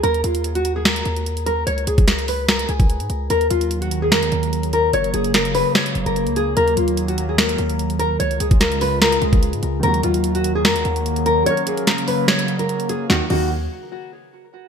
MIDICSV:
0, 0, Header, 1, 6, 480
1, 0, Start_track
1, 0, Key_signature, -6, "minor"
1, 0, Tempo, 408163
1, 42, Time_signature, 4, 2, 24, 8
1, 17265, End_track
2, 0, Start_track
2, 0, Title_t, "Nylon-string guitar"
2, 0, Program_c, 0, 24
2, 40, Note_on_c, 0, 70, 108
2, 233, Note_off_c, 0, 70, 0
2, 281, Note_on_c, 0, 65, 77
2, 627, Note_off_c, 0, 65, 0
2, 649, Note_on_c, 0, 66, 77
2, 841, Note_off_c, 0, 66, 0
2, 892, Note_on_c, 0, 68, 76
2, 981, Note_off_c, 0, 68, 0
2, 1003, Note_on_c, 0, 70, 87
2, 1679, Note_off_c, 0, 70, 0
2, 1720, Note_on_c, 0, 70, 89
2, 1913, Note_off_c, 0, 70, 0
2, 1959, Note_on_c, 0, 73, 98
2, 2153, Note_off_c, 0, 73, 0
2, 2204, Note_on_c, 0, 68, 68
2, 2395, Note_off_c, 0, 68, 0
2, 2440, Note_on_c, 0, 70, 84
2, 2633, Note_off_c, 0, 70, 0
2, 2687, Note_on_c, 0, 71, 87
2, 2877, Note_off_c, 0, 71, 0
2, 2922, Note_on_c, 0, 70, 77
2, 3114, Note_off_c, 0, 70, 0
2, 3164, Note_on_c, 0, 68, 72
2, 3840, Note_off_c, 0, 68, 0
2, 3885, Note_on_c, 0, 70, 103
2, 4076, Note_off_c, 0, 70, 0
2, 4122, Note_on_c, 0, 65, 85
2, 4468, Note_off_c, 0, 65, 0
2, 4486, Note_on_c, 0, 66, 75
2, 4680, Note_off_c, 0, 66, 0
2, 4729, Note_on_c, 0, 68, 83
2, 4820, Note_off_c, 0, 68, 0
2, 4844, Note_on_c, 0, 70, 85
2, 5520, Note_off_c, 0, 70, 0
2, 5567, Note_on_c, 0, 70, 77
2, 5757, Note_off_c, 0, 70, 0
2, 5806, Note_on_c, 0, 73, 98
2, 5997, Note_off_c, 0, 73, 0
2, 6045, Note_on_c, 0, 68, 88
2, 6236, Note_off_c, 0, 68, 0
2, 6282, Note_on_c, 0, 70, 83
2, 6474, Note_off_c, 0, 70, 0
2, 6524, Note_on_c, 0, 71, 87
2, 6715, Note_off_c, 0, 71, 0
2, 6767, Note_on_c, 0, 73, 83
2, 7110, Note_off_c, 0, 73, 0
2, 7129, Note_on_c, 0, 70, 76
2, 7461, Note_off_c, 0, 70, 0
2, 7484, Note_on_c, 0, 68, 83
2, 7676, Note_off_c, 0, 68, 0
2, 7722, Note_on_c, 0, 70, 109
2, 7914, Note_off_c, 0, 70, 0
2, 7961, Note_on_c, 0, 65, 74
2, 8307, Note_off_c, 0, 65, 0
2, 8328, Note_on_c, 0, 66, 76
2, 8520, Note_off_c, 0, 66, 0
2, 8571, Note_on_c, 0, 68, 76
2, 8661, Note_off_c, 0, 68, 0
2, 8681, Note_on_c, 0, 70, 83
2, 9359, Note_off_c, 0, 70, 0
2, 9400, Note_on_c, 0, 70, 88
2, 9593, Note_off_c, 0, 70, 0
2, 9639, Note_on_c, 0, 73, 101
2, 9832, Note_off_c, 0, 73, 0
2, 9883, Note_on_c, 0, 68, 70
2, 10074, Note_off_c, 0, 68, 0
2, 10120, Note_on_c, 0, 70, 82
2, 10313, Note_off_c, 0, 70, 0
2, 10366, Note_on_c, 0, 71, 86
2, 10556, Note_off_c, 0, 71, 0
2, 10602, Note_on_c, 0, 70, 78
2, 10794, Note_off_c, 0, 70, 0
2, 10845, Note_on_c, 0, 68, 76
2, 11521, Note_off_c, 0, 68, 0
2, 11562, Note_on_c, 0, 70, 98
2, 11754, Note_off_c, 0, 70, 0
2, 11807, Note_on_c, 0, 65, 82
2, 12150, Note_off_c, 0, 65, 0
2, 12171, Note_on_c, 0, 66, 76
2, 12363, Note_off_c, 0, 66, 0
2, 12411, Note_on_c, 0, 68, 84
2, 12501, Note_off_c, 0, 68, 0
2, 12525, Note_on_c, 0, 70, 85
2, 13200, Note_off_c, 0, 70, 0
2, 13241, Note_on_c, 0, 70, 77
2, 13434, Note_off_c, 0, 70, 0
2, 13480, Note_on_c, 0, 73, 104
2, 13673, Note_off_c, 0, 73, 0
2, 13722, Note_on_c, 0, 68, 88
2, 13914, Note_off_c, 0, 68, 0
2, 13961, Note_on_c, 0, 70, 75
2, 14153, Note_off_c, 0, 70, 0
2, 14204, Note_on_c, 0, 71, 84
2, 14395, Note_off_c, 0, 71, 0
2, 14440, Note_on_c, 0, 73, 94
2, 14786, Note_off_c, 0, 73, 0
2, 14810, Note_on_c, 0, 70, 80
2, 15142, Note_off_c, 0, 70, 0
2, 15163, Note_on_c, 0, 68, 82
2, 15355, Note_off_c, 0, 68, 0
2, 15402, Note_on_c, 0, 66, 88
2, 15541, Note_off_c, 0, 66, 0
2, 15642, Note_on_c, 0, 66, 85
2, 15866, Note_off_c, 0, 66, 0
2, 17265, End_track
3, 0, Start_track
3, 0, Title_t, "Grand piano"
3, 0, Program_c, 1, 0
3, 11522, Note_on_c, 1, 51, 69
3, 11565, Note_on_c, 1, 58, 65
3, 11609, Note_on_c, 1, 54, 75
3, 11761, Control_c, 1, 64, 127
3, 13423, Note_off_c, 1, 51, 0
3, 13424, Note_off_c, 1, 54, 0
3, 13442, Note_on_c, 1, 54, 65
3, 13445, Note_off_c, 1, 58, 0
3, 13486, Note_on_c, 1, 61, 64
3, 13499, Control_c, 1, 64, 0
3, 13529, Note_on_c, 1, 70, 73
3, 13717, Control_c, 1, 64, 127
3, 15343, Note_off_c, 1, 54, 0
3, 15366, Note_off_c, 1, 61, 0
3, 15388, Note_off_c, 1, 70, 0
3, 15402, Note_on_c, 1, 51, 85
3, 15402, Note_on_c, 1, 58, 77
3, 15402, Note_on_c, 1, 66, 95
3, 15419, Control_c, 1, 64, 0
3, 15541, Note_off_c, 1, 51, 0
3, 15541, Note_off_c, 1, 66, 0
3, 15542, Note_off_c, 1, 58, 0
3, 15642, Note_on_c, 1, 51, 85
3, 15642, Note_on_c, 1, 58, 82
3, 15642, Note_on_c, 1, 66, 93
3, 15865, Note_off_c, 1, 66, 0
3, 15866, Note_off_c, 1, 51, 0
3, 15866, Note_off_c, 1, 58, 0
3, 17265, End_track
4, 0, Start_track
4, 0, Title_t, "Analog synth pad"
4, 0, Program_c, 2, 89
4, 3881, Note_on_c, 2, 54, 91
4, 3882, Note_on_c, 2, 51, 84
4, 3882, Note_on_c, 2, 58, 76
4, 5783, Note_off_c, 2, 51, 0
4, 5802, Note_on_c, 2, 49, 83
4, 7683, Note_off_c, 2, 54, 0
4, 7703, Note_off_c, 2, 49, 0
4, 7722, Note_on_c, 2, 51, 83
4, 7723, Note_on_c, 2, 54, 95
4, 9595, Note_off_c, 2, 58, 0
4, 9623, Note_off_c, 2, 51, 0
4, 9623, Note_off_c, 2, 54, 0
4, 9642, Note_on_c, 2, 49, 82
4, 9642, Note_on_c, 2, 56, 75
4, 9642, Note_on_c, 2, 65, 89
4, 11543, Note_off_c, 2, 49, 0
4, 11543, Note_off_c, 2, 56, 0
4, 11543, Note_off_c, 2, 65, 0
4, 11562, Note_on_c, 2, 51, 85
4, 11562, Note_on_c, 2, 54, 90
4, 11563, Note_on_c, 2, 58, 73
4, 13463, Note_off_c, 2, 51, 0
4, 13482, Note_on_c, 2, 49, 84
4, 15364, Note_off_c, 2, 54, 0
4, 15364, Note_off_c, 2, 58, 0
4, 15383, Note_off_c, 2, 49, 0
4, 15403, Note_on_c, 2, 51, 69
4, 15403, Note_on_c, 2, 58, 67
4, 15404, Note_on_c, 2, 66, 81
4, 15626, Note_off_c, 2, 51, 0
4, 15626, Note_off_c, 2, 58, 0
4, 15626, Note_off_c, 2, 66, 0
4, 17265, End_track
5, 0, Start_track
5, 0, Title_t, "808-style bass"
5, 0, Program_c, 3, 38
5, 42, Note_on_c, 3, 39, 113
5, 273, Note_off_c, 3, 39, 0
5, 282, Note_on_c, 3, 39, 100
5, 1204, Note_off_c, 3, 39, 0
5, 1242, Note_on_c, 3, 39, 106
5, 1934, Note_off_c, 3, 39, 0
5, 1962, Note_on_c, 3, 37, 109
5, 2193, Note_off_c, 3, 37, 0
5, 2202, Note_on_c, 3, 37, 104
5, 3124, Note_off_c, 3, 37, 0
5, 3162, Note_on_c, 3, 37, 109
5, 3529, Note_on_c, 3, 44, 96
5, 3546, Note_off_c, 3, 37, 0
5, 3636, Note_off_c, 3, 44, 0
5, 3642, Note_on_c, 3, 37, 103
5, 3873, Note_off_c, 3, 37, 0
5, 3882, Note_on_c, 3, 39, 112
5, 4113, Note_off_c, 3, 39, 0
5, 4122, Note_on_c, 3, 39, 101
5, 4842, Note_on_c, 3, 41, 95
5, 4860, Note_off_c, 3, 39, 0
5, 4970, Note_on_c, 3, 39, 99
5, 4988, Note_off_c, 3, 41, 0
5, 5077, Note_off_c, 3, 39, 0
5, 5082, Note_on_c, 3, 39, 104
5, 5773, Note_off_c, 3, 39, 0
5, 5802, Note_on_c, 3, 30, 113
5, 6033, Note_off_c, 3, 30, 0
5, 6043, Note_on_c, 3, 30, 101
5, 6625, Note_off_c, 3, 30, 0
5, 7002, Note_on_c, 3, 30, 103
5, 7122, Note_off_c, 3, 30, 0
5, 7129, Note_on_c, 3, 30, 104
5, 7369, Note_on_c, 3, 37, 98
5, 7387, Note_off_c, 3, 30, 0
5, 7704, Note_off_c, 3, 37, 0
5, 7722, Note_on_c, 3, 39, 112
5, 7953, Note_off_c, 3, 39, 0
5, 7961, Note_on_c, 3, 39, 99
5, 8884, Note_off_c, 3, 39, 0
5, 8922, Note_on_c, 3, 39, 105
5, 9613, Note_off_c, 3, 39, 0
5, 9642, Note_on_c, 3, 37, 110
5, 9873, Note_off_c, 3, 37, 0
5, 9883, Note_on_c, 3, 37, 99
5, 10804, Note_off_c, 3, 37, 0
5, 10842, Note_on_c, 3, 37, 110
5, 11210, Note_on_c, 3, 44, 97
5, 11228, Note_off_c, 3, 37, 0
5, 11317, Note_off_c, 3, 44, 0
5, 11323, Note_on_c, 3, 37, 104
5, 11553, Note_off_c, 3, 37, 0
5, 11563, Note_on_c, 3, 39, 111
5, 11793, Note_off_c, 3, 39, 0
5, 11802, Note_on_c, 3, 39, 104
5, 12522, Note_on_c, 3, 41, 98
5, 12539, Note_off_c, 3, 39, 0
5, 12649, Note_on_c, 3, 39, 98
5, 12667, Note_off_c, 3, 41, 0
5, 12757, Note_off_c, 3, 39, 0
5, 12762, Note_on_c, 3, 39, 108
5, 13453, Note_off_c, 3, 39, 0
5, 15402, Note_on_c, 3, 39, 108
5, 15542, Note_off_c, 3, 39, 0
5, 15642, Note_on_c, 3, 39, 108
5, 16089, Note_off_c, 3, 39, 0
5, 17265, End_track
6, 0, Start_track
6, 0, Title_t, "Drums"
6, 42, Note_on_c, 9, 42, 87
6, 159, Note_off_c, 9, 42, 0
6, 170, Note_on_c, 9, 42, 49
6, 281, Note_off_c, 9, 42, 0
6, 281, Note_on_c, 9, 42, 98
6, 399, Note_off_c, 9, 42, 0
6, 407, Note_on_c, 9, 42, 66
6, 521, Note_off_c, 9, 42, 0
6, 521, Note_on_c, 9, 42, 78
6, 639, Note_off_c, 9, 42, 0
6, 650, Note_on_c, 9, 42, 58
6, 763, Note_off_c, 9, 42, 0
6, 763, Note_on_c, 9, 42, 79
6, 880, Note_off_c, 9, 42, 0
6, 1003, Note_on_c, 9, 38, 116
6, 1004, Note_on_c, 9, 42, 77
6, 1121, Note_off_c, 9, 38, 0
6, 1122, Note_off_c, 9, 42, 0
6, 1131, Note_on_c, 9, 42, 87
6, 1239, Note_off_c, 9, 42, 0
6, 1239, Note_on_c, 9, 42, 56
6, 1357, Note_off_c, 9, 42, 0
6, 1370, Note_on_c, 9, 42, 57
6, 1486, Note_off_c, 9, 42, 0
6, 1486, Note_on_c, 9, 42, 69
6, 1604, Note_off_c, 9, 42, 0
6, 1609, Note_on_c, 9, 42, 60
6, 1723, Note_off_c, 9, 42, 0
6, 1723, Note_on_c, 9, 42, 70
6, 1840, Note_off_c, 9, 42, 0
6, 1963, Note_on_c, 9, 42, 89
6, 2080, Note_off_c, 9, 42, 0
6, 2091, Note_on_c, 9, 42, 49
6, 2201, Note_off_c, 9, 42, 0
6, 2201, Note_on_c, 9, 42, 101
6, 2319, Note_off_c, 9, 42, 0
6, 2327, Note_on_c, 9, 42, 64
6, 2328, Note_on_c, 9, 36, 97
6, 2441, Note_off_c, 9, 42, 0
6, 2441, Note_on_c, 9, 42, 78
6, 2442, Note_on_c, 9, 38, 97
6, 2446, Note_off_c, 9, 36, 0
6, 2558, Note_off_c, 9, 42, 0
6, 2560, Note_off_c, 9, 38, 0
6, 2570, Note_on_c, 9, 42, 56
6, 2682, Note_on_c, 9, 46, 89
6, 2688, Note_off_c, 9, 42, 0
6, 2799, Note_off_c, 9, 46, 0
6, 2922, Note_on_c, 9, 38, 122
6, 2924, Note_on_c, 9, 42, 78
6, 3040, Note_off_c, 9, 38, 0
6, 3041, Note_off_c, 9, 42, 0
6, 3050, Note_on_c, 9, 42, 87
6, 3159, Note_off_c, 9, 42, 0
6, 3159, Note_on_c, 9, 42, 55
6, 3276, Note_off_c, 9, 42, 0
6, 3288, Note_on_c, 9, 36, 95
6, 3289, Note_on_c, 9, 42, 59
6, 3405, Note_off_c, 9, 42, 0
6, 3405, Note_on_c, 9, 42, 68
6, 3406, Note_off_c, 9, 36, 0
6, 3523, Note_off_c, 9, 42, 0
6, 3528, Note_on_c, 9, 42, 58
6, 3642, Note_off_c, 9, 42, 0
6, 3642, Note_on_c, 9, 42, 70
6, 3759, Note_off_c, 9, 42, 0
6, 3882, Note_on_c, 9, 42, 87
6, 3999, Note_off_c, 9, 42, 0
6, 4010, Note_on_c, 9, 42, 49
6, 4121, Note_off_c, 9, 42, 0
6, 4121, Note_on_c, 9, 42, 101
6, 4239, Note_off_c, 9, 42, 0
6, 4247, Note_on_c, 9, 42, 63
6, 4361, Note_off_c, 9, 42, 0
6, 4361, Note_on_c, 9, 42, 77
6, 4478, Note_off_c, 9, 42, 0
6, 4491, Note_on_c, 9, 42, 57
6, 4602, Note_off_c, 9, 42, 0
6, 4602, Note_on_c, 9, 42, 82
6, 4720, Note_off_c, 9, 42, 0
6, 4842, Note_on_c, 9, 38, 121
6, 4844, Note_on_c, 9, 42, 77
6, 4960, Note_off_c, 9, 38, 0
6, 4961, Note_off_c, 9, 42, 0
6, 4970, Note_on_c, 9, 42, 88
6, 5078, Note_off_c, 9, 42, 0
6, 5078, Note_on_c, 9, 42, 57
6, 5196, Note_off_c, 9, 42, 0
6, 5209, Note_on_c, 9, 42, 58
6, 5326, Note_off_c, 9, 42, 0
6, 5326, Note_on_c, 9, 42, 69
6, 5443, Note_off_c, 9, 42, 0
6, 5449, Note_on_c, 9, 42, 60
6, 5562, Note_off_c, 9, 42, 0
6, 5562, Note_on_c, 9, 42, 69
6, 5680, Note_off_c, 9, 42, 0
6, 5802, Note_on_c, 9, 42, 91
6, 5920, Note_off_c, 9, 42, 0
6, 5930, Note_on_c, 9, 42, 48
6, 6041, Note_off_c, 9, 42, 0
6, 6041, Note_on_c, 9, 42, 105
6, 6159, Note_off_c, 9, 42, 0
6, 6167, Note_on_c, 9, 42, 62
6, 6281, Note_off_c, 9, 42, 0
6, 6281, Note_on_c, 9, 42, 80
6, 6283, Note_on_c, 9, 38, 94
6, 6399, Note_off_c, 9, 42, 0
6, 6400, Note_off_c, 9, 38, 0
6, 6411, Note_on_c, 9, 42, 57
6, 6522, Note_on_c, 9, 46, 92
6, 6528, Note_off_c, 9, 42, 0
6, 6640, Note_off_c, 9, 46, 0
6, 6763, Note_on_c, 9, 38, 119
6, 6764, Note_on_c, 9, 42, 79
6, 6880, Note_off_c, 9, 38, 0
6, 6882, Note_off_c, 9, 42, 0
6, 6891, Note_on_c, 9, 42, 88
6, 6999, Note_off_c, 9, 42, 0
6, 6999, Note_on_c, 9, 42, 55
6, 7117, Note_off_c, 9, 42, 0
6, 7130, Note_on_c, 9, 42, 59
6, 7246, Note_off_c, 9, 42, 0
6, 7246, Note_on_c, 9, 42, 68
6, 7364, Note_off_c, 9, 42, 0
6, 7369, Note_on_c, 9, 42, 59
6, 7482, Note_off_c, 9, 42, 0
6, 7482, Note_on_c, 9, 42, 71
6, 7600, Note_off_c, 9, 42, 0
6, 7723, Note_on_c, 9, 42, 91
6, 7840, Note_off_c, 9, 42, 0
6, 7850, Note_on_c, 9, 42, 48
6, 7961, Note_off_c, 9, 42, 0
6, 7961, Note_on_c, 9, 42, 98
6, 8079, Note_off_c, 9, 42, 0
6, 8088, Note_on_c, 9, 42, 65
6, 8201, Note_off_c, 9, 42, 0
6, 8201, Note_on_c, 9, 42, 78
6, 8319, Note_off_c, 9, 42, 0
6, 8331, Note_on_c, 9, 42, 56
6, 8443, Note_off_c, 9, 42, 0
6, 8443, Note_on_c, 9, 42, 82
6, 8560, Note_off_c, 9, 42, 0
6, 8683, Note_on_c, 9, 38, 118
6, 8684, Note_on_c, 9, 42, 77
6, 8800, Note_off_c, 9, 38, 0
6, 8802, Note_off_c, 9, 42, 0
6, 8810, Note_on_c, 9, 42, 87
6, 8919, Note_off_c, 9, 42, 0
6, 8919, Note_on_c, 9, 42, 56
6, 9036, Note_off_c, 9, 42, 0
6, 9049, Note_on_c, 9, 42, 59
6, 9165, Note_off_c, 9, 42, 0
6, 9165, Note_on_c, 9, 42, 69
6, 9283, Note_off_c, 9, 42, 0
6, 9289, Note_on_c, 9, 42, 59
6, 9402, Note_off_c, 9, 42, 0
6, 9402, Note_on_c, 9, 42, 72
6, 9520, Note_off_c, 9, 42, 0
6, 9642, Note_on_c, 9, 42, 86
6, 9760, Note_off_c, 9, 42, 0
6, 9770, Note_on_c, 9, 42, 48
6, 9882, Note_off_c, 9, 42, 0
6, 9882, Note_on_c, 9, 42, 99
6, 9999, Note_off_c, 9, 42, 0
6, 10008, Note_on_c, 9, 42, 62
6, 10009, Note_on_c, 9, 36, 96
6, 10121, Note_off_c, 9, 42, 0
6, 10121, Note_on_c, 9, 42, 79
6, 10123, Note_on_c, 9, 38, 94
6, 10126, Note_off_c, 9, 36, 0
6, 10239, Note_off_c, 9, 42, 0
6, 10240, Note_off_c, 9, 38, 0
6, 10251, Note_on_c, 9, 42, 56
6, 10362, Note_on_c, 9, 46, 85
6, 10368, Note_off_c, 9, 42, 0
6, 10480, Note_off_c, 9, 46, 0
6, 10603, Note_on_c, 9, 38, 121
6, 10604, Note_on_c, 9, 42, 77
6, 10720, Note_off_c, 9, 38, 0
6, 10722, Note_off_c, 9, 42, 0
6, 10730, Note_on_c, 9, 42, 89
6, 10838, Note_off_c, 9, 42, 0
6, 10838, Note_on_c, 9, 42, 56
6, 10956, Note_off_c, 9, 42, 0
6, 10968, Note_on_c, 9, 36, 94
6, 10969, Note_on_c, 9, 42, 56
6, 11085, Note_off_c, 9, 42, 0
6, 11085, Note_on_c, 9, 42, 71
6, 11086, Note_off_c, 9, 36, 0
6, 11203, Note_off_c, 9, 42, 0
6, 11208, Note_on_c, 9, 42, 57
6, 11321, Note_off_c, 9, 42, 0
6, 11321, Note_on_c, 9, 42, 71
6, 11439, Note_off_c, 9, 42, 0
6, 11561, Note_on_c, 9, 42, 92
6, 11679, Note_off_c, 9, 42, 0
6, 11689, Note_on_c, 9, 42, 51
6, 11800, Note_off_c, 9, 42, 0
6, 11800, Note_on_c, 9, 42, 103
6, 11918, Note_off_c, 9, 42, 0
6, 11926, Note_on_c, 9, 42, 63
6, 12040, Note_off_c, 9, 42, 0
6, 12040, Note_on_c, 9, 42, 81
6, 12158, Note_off_c, 9, 42, 0
6, 12170, Note_on_c, 9, 42, 58
6, 12281, Note_off_c, 9, 42, 0
6, 12281, Note_on_c, 9, 42, 82
6, 12399, Note_off_c, 9, 42, 0
6, 12522, Note_on_c, 9, 38, 119
6, 12523, Note_on_c, 9, 42, 78
6, 12640, Note_off_c, 9, 38, 0
6, 12641, Note_off_c, 9, 42, 0
6, 12650, Note_on_c, 9, 42, 90
6, 12759, Note_off_c, 9, 42, 0
6, 12759, Note_on_c, 9, 42, 55
6, 12876, Note_off_c, 9, 42, 0
6, 12889, Note_on_c, 9, 42, 59
6, 13005, Note_off_c, 9, 42, 0
6, 13005, Note_on_c, 9, 42, 68
6, 13122, Note_off_c, 9, 42, 0
6, 13128, Note_on_c, 9, 42, 60
6, 13241, Note_off_c, 9, 42, 0
6, 13241, Note_on_c, 9, 42, 70
6, 13359, Note_off_c, 9, 42, 0
6, 13482, Note_on_c, 9, 42, 90
6, 13599, Note_off_c, 9, 42, 0
6, 13610, Note_on_c, 9, 42, 52
6, 13721, Note_off_c, 9, 42, 0
6, 13721, Note_on_c, 9, 42, 103
6, 13839, Note_off_c, 9, 42, 0
6, 13847, Note_on_c, 9, 42, 64
6, 13960, Note_off_c, 9, 42, 0
6, 13960, Note_on_c, 9, 42, 80
6, 13962, Note_on_c, 9, 38, 96
6, 14078, Note_off_c, 9, 42, 0
6, 14080, Note_off_c, 9, 38, 0
6, 14090, Note_on_c, 9, 42, 59
6, 14202, Note_on_c, 9, 46, 92
6, 14208, Note_off_c, 9, 42, 0
6, 14319, Note_off_c, 9, 46, 0
6, 14442, Note_on_c, 9, 38, 121
6, 14444, Note_on_c, 9, 42, 79
6, 14560, Note_off_c, 9, 38, 0
6, 14561, Note_off_c, 9, 42, 0
6, 14570, Note_on_c, 9, 42, 89
6, 14679, Note_off_c, 9, 42, 0
6, 14679, Note_on_c, 9, 42, 57
6, 14796, Note_off_c, 9, 42, 0
6, 14810, Note_on_c, 9, 42, 57
6, 14926, Note_off_c, 9, 42, 0
6, 14926, Note_on_c, 9, 42, 69
6, 15043, Note_off_c, 9, 42, 0
6, 15049, Note_on_c, 9, 42, 59
6, 15163, Note_off_c, 9, 42, 0
6, 15163, Note_on_c, 9, 42, 70
6, 15280, Note_off_c, 9, 42, 0
6, 15403, Note_on_c, 9, 38, 90
6, 15520, Note_off_c, 9, 38, 0
6, 15642, Note_on_c, 9, 49, 90
6, 15760, Note_off_c, 9, 49, 0
6, 17265, End_track
0, 0, End_of_file